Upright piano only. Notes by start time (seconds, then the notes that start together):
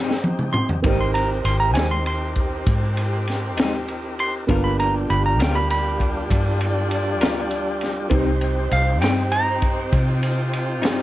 Already playing: C4 D#4 G4 D6
0.82 C4 D#4 G4 A#4
4.47 A#3 B3 D4 F4
8.10 C4 D#4 G4 C5